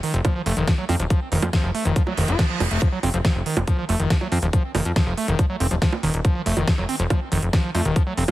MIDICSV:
0, 0, Header, 1, 5, 480
1, 0, Start_track
1, 0, Tempo, 428571
1, 1236, Time_signature, 4, 2, 24, 8
1, 9307, End_track
2, 0, Start_track
2, 0, Title_t, "Acid bass"
2, 0, Program_c, 0, 38
2, 36, Note_on_c, 0, 51, 79
2, 144, Note_off_c, 0, 51, 0
2, 276, Note_on_c, 0, 53, 85
2, 384, Note_off_c, 0, 53, 0
2, 396, Note_on_c, 0, 53, 78
2, 468, Note_off_c, 0, 53, 0
2, 516, Note_on_c, 0, 57, 79
2, 624, Note_off_c, 0, 57, 0
2, 636, Note_on_c, 0, 51, 78
2, 744, Note_off_c, 0, 51, 0
2, 756, Note_on_c, 0, 53, 100
2, 828, Note_off_c, 0, 53, 0
2, 876, Note_on_c, 0, 54, 101
2, 948, Note_off_c, 0, 54, 0
2, 996, Note_on_c, 0, 60, 106
2, 1068, Note_off_c, 0, 60, 0
2, 1116, Note_on_c, 0, 53, 74
2, 1159, Note_off_c, 0, 53, 0
2, 1236, Note_on_c, 0, 53, 86
2, 1344, Note_off_c, 0, 53, 0
2, 1476, Note_on_c, 0, 51, 81
2, 1584, Note_off_c, 0, 51, 0
2, 1716, Note_on_c, 0, 53, 88
2, 1824, Note_off_c, 0, 53, 0
2, 1836, Note_on_c, 0, 53, 76
2, 1908, Note_off_c, 0, 53, 0
2, 1956, Note_on_c, 0, 57, 81
2, 2064, Note_off_c, 0, 57, 0
2, 2076, Note_on_c, 0, 51, 83
2, 2184, Note_off_c, 0, 51, 0
2, 2196, Note_on_c, 0, 53, 103
2, 2268, Note_off_c, 0, 53, 0
2, 2316, Note_on_c, 0, 54, 103
2, 2388, Note_off_c, 0, 54, 0
2, 2436, Note_on_c, 0, 51, 73
2, 2556, Note_on_c, 0, 65, 76
2, 2573, Note_off_c, 0, 51, 0
2, 2664, Note_off_c, 0, 65, 0
2, 2676, Note_on_c, 0, 53, 100
2, 2748, Note_off_c, 0, 53, 0
2, 2796, Note_on_c, 0, 53, 79
2, 2904, Note_off_c, 0, 53, 0
2, 2916, Note_on_c, 0, 53, 77
2, 2959, Note_off_c, 0, 53, 0
2, 3036, Note_on_c, 0, 57, 103
2, 3144, Note_off_c, 0, 57, 0
2, 3156, Note_on_c, 0, 53, 106
2, 3228, Note_off_c, 0, 53, 0
2, 3276, Note_on_c, 0, 54, 110
2, 3348, Note_off_c, 0, 54, 0
2, 3396, Note_on_c, 0, 60, 107
2, 3468, Note_off_c, 0, 60, 0
2, 3516, Note_on_c, 0, 53, 79
2, 3559, Note_off_c, 0, 53, 0
2, 3636, Note_on_c, 0, 53, 90
2, 3744, Note_off_c, 0, 53, 0
2, 3876, Note_on_c, 0, 51, 79
2, 3984, Note_off_c, 0, 51, 0
2, 4116, Note_on_c, 0, 53, 106
2, 4224, Note_off_c, 0, 53, 0
2, 4236, Note_on_c, 0, 53, 78
2, 4308, Note_off_c, 0, 53, 0
2, 4356, Note_on_c, 0, 57, 77
2, 4464, Note_off_c, 0, 57, 0
2, 4476, Note_on_c, 0, 51, 78
2, 4584, Note_off_c, 0, 51, 0
2, 4596, Note_on_c, 0, 53, 102
2, 4668, Note_off_c, 0, 53, 0
2, 4716, Note_on_c, 0, 54, 102
2, 4788, Note_off_c, 0, 54, 0
2, 4836, Note_on_c, 0, 60, 99
2, 4908, Note_off_c, 0, 60, 0
2, 4956, Note_on_c, 0, 53, 78
2, 4999, Note_off_c, 0, 53, 0
2, 5076, Note_on_c, 0, 53, 84
2, 5184, Note_off_c, 0, 53, 0
2, 5316, Note_on_c, 0, 51, 80
2, 5424, Note_off_c, 0, 51, 0
2, 5556, Note_on_c, 0, 53, 108
2, 5664, Note_off_c, 0, 53, 0
2, 5676, Note_on_c, 0, 53, 80
2, 5748, Note_off_c, 0, 53, 0
2, 5796, Note_on_c, 0, 57, 82
2, 5904, Note_off_c, 0, 57, 0
2, 5916, Note_on_c, 0, 51, 75
2, 6024, Note_off_c, 0, 51, 0
2, 6036, Note_on_c, 0, 53, 104
2, 6108, Note_off_c, 0, 53, 0
2, 6156, Note_on_c, 0, 54, 108
2, 6228, Note_off_c, 0, 54, 0
2, 6276, Note_on_c, 0, 60, 101
2, 6348, Note_off_c, 0, 60, 0
2, 6396, Note_on_c, 0, 53, 76
2, 6439, Note_off_c, 0, 53, 0
2, 6516, Note_on_c, 0, 53, 80
2, 6624, Note_off_c, 0, 53, 0
2, 6756, Note_on_c, 0, 51, 76
2, 6864, Note_off_c, 0, 51, 0
2, 6996, Note_on_c, 0, 53, 101
2, 7104, Note_off_c, 0, 53, 0
2, 7116, Note_on_c, 0, 53, 81
2, 7188, Note_off_c, 0, 53, 0
2, 7236, Note_on_c, 0, 57, 76
2, 7344, Note_off_c, 0, 57, 0
2, 7356, Note_on_c, 0, 51, 82
2, 7464, Note_off_c, 0, 51, 0
2, 7475, Note_on_c, 0, 53, 107
2, 7548, Note_off_c, 0, 53, 0
2, 7596, Note_on_c, 0, 54, 101
2, 7668, Note_off_c, 0, 54, 0
2, 7716, Note_on_c, 0, 60, 107
2, 7788, Note_off_c, 0, 60, 0
2, 7836, Note_on_c, 0, 53, 78
2, 7879, Note_off_c, 0, 53, 0
2, 7956, Note_on_c, 0, 53, 82
2, 8064, Note_off_c, 0, 53, 0
2, 8196, Note_on_c, 0, 51, 77
2, 8304, Note_off_c, 0, 51, 0
2, 8436, Note_on_c, 0, 53, 102
2, 8544, Note_off_c, 0, 53, 0
2, 8556, Note_on_c, 0, 53, 77
2, 8628, Note_off_c, 0, 53, 0
2, 8676, Note_on_c, 0, 57, 75
2, 8784, Note_off_c, 0, 57, 0
2, 8796, Note_on_c, 0, 51, 77
2, 8904, Note_off_c, 0, 51, 0
2, 8916, Note_on_c, 0, 53, 102
2, 8988, Note_off_c, 0, 53, 0
2, 9036, Note_on_c, 0, 54, 103
2, 9108, Note_off_c, 0, 54, 0
2, 9156, Note_on_c, 0, 60, 105
2, 9228, Note_off_c, 0, 60, 0
2, 9307, End_track
3, 0, Start_track
3, 0, Title_t, "Analog synth bass"
3, 0, Program_c, 1, 38
3, 156, Note_on_c, 1, 29, 88
3, 232, Note_off_c, 1, 29, 0
3, 516, Note_on_c, 1, 29, 94
3, 592, Note_off_c, 1, 29, 0
3, 636, Note_on_c, 1, 29, 83
3, 712, Note_off_c, 1, 29, 0
3, 996, Note_on_c, 1, 41, 97
3, 1072, Note_off_c, 1, 41, 0
3, 1116, Note_on_c, 1, 27, 83
3, 1192, Note_off_c, 1, 27, 0
3, 1476, Note_on_c, 1, 29, 98
3, 1552, Note_off_c, 1, 29, 0
3, 1596, Note_on_c, 1, 41, 82
3, 1672, Note_off_c, 1, 41, 0
3, 1836, Note_on_c, 1, 29, 72
3, 1912, Note_off_c, 1, 29, 0
3, 2076, Note_on_c, 1, 29, 88
3, 2152, Note_off_c, 1, 29, 0
3, 2436, Note_on_c, 1, 29, 95
3, 2512, Note_off_c, 1, 29, 0
3, 2556, Note_on_c, 1, 29, 82
3, 2632, Note_off_c, 1, 29, 0
3, 2916, Note_on_c, 1, 29, 98
3, 2992, Note_off_c, 1, 29, 0
3, 3036, Note_on_c, 1, 29, 87
3, 3112, Note_off_c, 1, 29, 0
3, 3396, Note_on_c, 1, 29, 100
3, 3472, Note_off_c, 1, 29, 0
3, 3516, Note_on_c, 1, 29, 84
3, 3592, Note_off_c, 1, 29, 0
3, 3756, Note_on_c, 1, 29, 78
3, 3832, Note_off_c, 1, 29, 0
3, 3996, Note_on_c, 1, 29, 90
3, 4072, Note_off_c, 1, 29, 0
3, 4356, Note_on_c, 1, 29, 93
3, 4432, Note_off_c, 1, 29, 0
3, 4477, Note_on_c, 1, 29, 79
3, 4552, Note_off_c, 1, 29, 0
3, 4837, Note_on_c, 1, 41, 94
3, 4912, Note_off_c, 1, 41, 0
3, 4957, Note_on_c, 1, 27, 87
3, 5032, Note_off_c, 1, 27, 0
3, 5317, Note_on_c, 1, 29, 97
3, 5392, Note_off_c, 1, 29, 0
3, 5436, Note_on_c, 1, 41, 82
3, 5512, Note_off_c, 1, 41, 0
3, 5677, Note_on_c, 1, 29, 72
3, 5752, Note_off_c, 1, 29, 0
3, 5916, Note_on_c, 1, 29, 92
3, 5992, Note_off_c, 1, 29, 0
3, 6276, Note_on_c, 1, 29, 93
3, 6352, Note_off_c, 1, 29, 0
3, 6396, Note_on_c, 1, 27, 77
3, 6471, Note_off_c, 1, 27, 0
3, 6756, Note_on_c, 1, 27, 98
3, 6832, Note_off_c, 1, 27, 0
3, 6876, Note_on_c, 1, 27, 86
3, 6952, Note_off_c, 1, 27, 0
3, 7236, Note_on_c, 1, 29, 96
3, 7312, Note_off_c, 1, 29, 0
3, 7356, Note_on_c, 1, 29, 79
3, 7432, Note_off_c, 1, 29, 0
3, 7596, Note_on_c, 1, 29, 74
3, 7672, Note_off_c, 1, 29, 0
3, 7836, Note_on_c, 1, 29, 90
3, 7912, Note_off_c, 1, 29, 0
3, 8196, Note_on_c, 1, 29, 98
3, 8272, Note_off_c, 1, 29, 0
3, 8316, Note_on_c, 1, 29, 78
3, 8392, Note_off_c, 1, 29, 0
3, 8676, Note_on_c, 1, 41, 95
3, 8752, Note_off_c, 1, 41, 0
3, 8796, Note_on_c, 1, 27, 86
3, 8872, Note_off_c, 1, 27, 0
3, 9156, Note_on_c, 1, 29, 97
3, 9232, Note_off_c, 1, 29, 0
3, 9307, End_track
4, 0, Start_track
4, 0, Title_t, "Reverse cymbal"
4, 0, Program_c, 2, 119
4, 2196, Note_on_c, 2, 60, 66
4, 3156, Note_off_c, 2, 60, 0
4, 9307, End_track
5, 0, Start_track
5, 0, Title_t, "Drums"
5, 36, Note_on_c, 9, 46, 92
5, 148, Note_off_c, 9, 46, 0
5, 156, Note_on_c, 9, 42, 66
5, 268, Note_off_c, 9, 42, 0
5, 276, Note_on_c, 9, 36, 122
5, 276, Note_on_c, 9, 42, 69
5, 276, Note_on_c, 9, 60, 82
5, 388, Note_off_c, 9, 36, 0
5, 388, Note_off_c, 9, 42, 0
5, 388, Note_off_c, 9, 60, 0
5, 516, Note_on_c, 9, 46, 106
5, 628, Note_off_c, 9, 46, 0
5, 636, Note_on_c, 9, 42, 68
5, 748, Note_off_c, 9, 42, 0
5, 756, Note_on_c, 9, 36, 114
5, 756, Note_on_c, 9, 38, 114
5, 756, Note_on_c, 9, 42, 67
5, 868, Note_off_c, 9, 36, 0
5, 868, Note_off_c, 9, 38, 0
5, 868, Note_off_c, 9, 42, 0
5, 996, Note_on_c, 9, 46, 93
5, 996, Note_on_c, 9, 60, 43
5, 1108, Note_off_c, 9, 46, 0
5, 1108, Note_off_c, 9, 60, 0
5, 1116, Note_on_c, 9, 42, 69
5, 1228, Note_off_c, 9, 42, 0
5, 1236, Note_on_c, 9, 36, 119
5, 1236, Note_on_c, 9, 42, 69
5, 1348, Note_off_c, 9, 36, 0
5, 1348, Note_off_c, 9, 42, 0
5, 1476, Note_on_c, 9, 46, 97
5, 1588, Note_off_c, 9, 46, 0
5, 1596, Note_on_c, 9, 42, 69
5, 1596, Note_on_c, 9, 60, 79
5, 1708, Note_off_c, 9, 42, 0
5, 1708, Note_off_c, 9, 60, 0
5, 1716, Note_on_c, 9, 36, 123
5, 1716, Note_on_c, 9, 38, 121
5, 1716, Note_on_c, 9, 42, 70
5, 1828, Note_off_c, 9, 36, 0
5, 1828, Note_off_c, 9, 38, 0
5, 1828, Note_off_c, 9, 42, 0
5, 1956, Note_on_c, 9, 46, 93
5, 2068, Note_off_c, 9, 46, 0
5, 2076, Note_on_c, 9, 42, 67
5, 2188, Note_off_c, 9, 42, 0
5, 2196, Note_on_c, 9, 36, 115
5, 2196, Note_on_c, 9, 42, 72
5, 2308, Note_off_c, 9, 36, 0
5, 2308, Note_off_c, 9, 42, 0
5, 2316, Note_on_c, 9, 60, 39
5, 2428, Note_off_c, 9, 60, 0
5, 2435, Note_on_c, 9, 46, 108
5, 2547, Note_off_c, 9, 46, 0
5, 2556, Note_on_c, 9, 42, 67
5, 2668, Note_off_c, 9, 42, 0
5, 2676, Note_on_c, 9, 36, 119
5, 2676, Note_on_c, 9, 38, 120
5, 2676, Note_on_c, 9, 42, 64
5, 2788, Note_off_c, 9, 36, 0
5, 2788, Note_off_c, 9, 38, 0
5, 2788, Note_off_c, 9, 42, 0
5, 2916, Note_on_c, 9, 46, 93
5, 2916, Note_on_c, 9, 60, 78
5, 3028, Note_off_c, 9, 46, 0
5, 3028, Note_off_c, 9, 60, 0
5, 3036, Note_on_c, 9, 42, 71
5, 3148, Note_off_c, 9, 42, 0
5, 3156, Note_on_c, 9, 36, 125
5, 3156, Note_on_c, 9, 42, 71
5, 3268, Note_off_c, 9, 36, 0
5, 3268, Note_off_c, 9, 42, 0
5, 3396, Note_on_c, 9, 46, 104
5, 3396, Note_on_c, 9, 60, 37
5, 3508, Note_off_c, 9, 46, 0
5, 3508, Note_off_c, 9, 60, 0
5, 3516, Note_on_c, 9, 42, 71
5, 3628, Note_off_c, 9, 42, 0
5, 3636, Note_on_c, 9, 36, 123
5, 3636, Note_on_c, 9, 38, 127
5, 3636, Note_on_c, 9, 42, 68
5, 3748, Note_off_c, 9, 36, 0
5, 3748, Note_off_c, 9, 38, 0
5, 3748, Note_off_c, 9, 42, 0
5, 3876, Note_on_c, 9, 46, 96
5, 3988, Note_off_c, 9, 46, 0
5, 3996, Note_on_c, 9, 42, 66
5, 3996, Note_on_c, 9, 60, 75
5, 4108, Note_off_c, 9, 42, 0
5, 4108, Note_off_c, 9, 60, 0
5, 4116, Note_on_c, 9, 36, 121
5, 4116, Note_on_c, 9, 42, 69
5, 4228, Note_off_c, 9, 36, 0
5, 4228, Note_off_c, 9, 42, 0
5, 4356, Note_on_c, 9, 46, 108
5, 4468, Note_off_c, 9, 46, 0
5, 4476, Note_on_c, 9, 42, 70
5, 4588, Note_off_c, 9, 42, 0
5, 4596, Note_on_c, 9, 36, 118
5, 4596, Note_on_c, 9, 38, 115
5, 4596, Note_on_c, 9, 42, 67
5, 4708, Note_off_c, 9, 36, 0
5, 4708, Note_off_c, 9, 38, 0
5, 4708, Note_off_c, 9, 42, 0
5, 4716, Note_on_c, 9, 60, 41
5, 4828, Note_off_c, 9, 60, 0
5, 4836, Note_on_c, 9, 46, 98
5, 4948, Note_off_c, 9, 46, 0
5, 4956, Note_on_c, 9, 42, 73
5, 5068, Note_off_c, 9, 42, 0
5, 5076, Note_on_c, 9, 36, 122
5, 5076, Note_on_c, 9, 42, 68
5, 5188, Note_off_c, 9, 36, 0
5, 5188, Note_off_c, 9, 42, 0
5, 5316, Note_on_c, 9, 46, 110
5, 5316, Note_on_c, 9, 60, 72
5, 5428, Note_off_c, 9, 46, 0
5, 5428, Note_off_c, 9, 60, 0
5, 5436, Note_on_c, 9, 42, 69
5, 5548, Note_off_c, 9, 42, 0
5, 5556, Note_on_c, 9, 36, 127
5, 5556, Note_on_c, 9, 38, 125
5, 5556, Note_on_c, 9, 42, 69
5, 5668, Note_off_c, 9, 36, 0
5, 5668, Note_off_c, 9, 38, 0
5, 5668, Note_off_c, 9, 42, 0
5, 5796, Note_on_c, 9, 46, 97
5, 5908, Note_off_c, 9, 46, 0
5, 5916, Note_on_c, 9, 42, 66
5, 6028, Note_off_c, 9, 42, 0
5, 6036, Note_on_c, 9, 36, 127
5, 6036, Note_on_c, 9, 42, 69
5, 6036, Note_on_c, 9, 60, 38
5, 6148, Note_off_c, 9, 36, 0
5, 6148, Note_off_c, 9, 42, 0
5, 6148, Note_off_c, 9, 60, 0
5, 6276, Note_on_c, 9, 46, 115
5, 6388, Note_off_c, 9, 46, 0
5, 6396, Note_on_c, 9, 42, 69
5, 6508, Note_off_c, 9, 42, 0
5, 6516, Note_on_c, 9, 36, 120
5, 6516, Note_on_c, 9, 38, 117
5, 6516, Note_on_c, 9, 42, 63
5, 6628, Note_off_c, 9, 36, 0
5, 6628, Note_off_c, 9, 38, 0
5, 6628, Note_off_c, 9, 42, 0
5, 6636, Note_on_c, 9, 60, 77
5, 6748, Note_off_c, 9, 60, 0
5, 6756, Note_on_c, 9, 46, 98
5, 6868, Note_off_c, 9, 46, 0
5, 6876, Note_on_c, 9, 42, 68
5, 6988, Note_off_c, 9, 42, 0
5, 6996, Note_on_c, 9, 36, 127
5, 6996, Note_on_c, 9, 42, 64
5, 7108, Note_off_c, 9, 36, 0
5, 7108, Note_off_c, 9, 42, 0
5, 7236, Note_on_c, 9, 46, 111
5, 7348, Note_off_c, 9, 46, 0
5, 7356, Note_on_c, 9, 42, 64
5, 7356, Note_on_c, 9, 60, 42
5, 7468, Note_off_c, 9, 42, 0
5, 7468, Note_off_c, 9, 60, 0
5, 7476, Note_on_c, 9, 36, 127
5, 7476, Note_on_c, 9, 38, 126
5, 7476, Note_on_c, 9, 42, 68
5, 7588, Note_off_c, 9, 36, 0
5, 7588, Note_off_c, 9, 38, 0
5, 7588, Note_off_c, 9, 42, 0
5, 7716, Note_on_c, 9, 46, 103
5, 7828, Note_off_c, 9, 46, 0
5, 7836, Note_on_c, 9, 42, 63
5, 7948, Note_off_c, 9, 42, 0
5, 7956, Note_on_c, 9, 36, 122
5, 7956, Note_on_c, 9, 42, 67
5, 7956, Note_on_c, 9, 60, 77
5, 8068, Note_off_c, 9, 36, 0
5, 8068, Note_off_c, 9, 42, 0
5, 8068, Note_off_c, 9, 60, 0
5, 8196, Note_on_c, 9, 46, 118
5, 8308, Note_off_c, 9, 46, 0
5, 8316, Note_on_c, 9, 42, 65
5, 8428, Note_off_c, 9, 42, 0
5, 8436, Note_on_c, 9, 36, 124
5, 8436, Note_on_c, 9, 38, 120
5, 8436, Note_on_c, 9, 42, 64
5, 8548, Note_off_c, 9, 36, 0
5, 8548, Note_off_c, 9, 38, 0
5, 8548, Note_off_c, 9, 42, 0
5, 8676, Note_on_c, 9, 46, 100
5, 8676, Note_on_c, 9, 60, 39
5, 8788, Note_off_c, 9, 46, 0
5, 8788, Note_off_c, 9, 60, 0
5, 8796, Note_on_c, 9, 42, 67
5, 8908, Note_off_c, 9, 42, 0
5, 8916, Note_on_c, 9, 36, 123
5, 8916, Note_on_c, 9, 42, 64
5, 9028, Note_off_c, 9, 36, 0
5, 9028, Note_off_c, 9, 42, 0
5, 9156, Note_on_c, 9, 46, 110
5, 9268, Note_off_c, 9, 46, 0
5, 9307, End_track
0, 0, End_of_file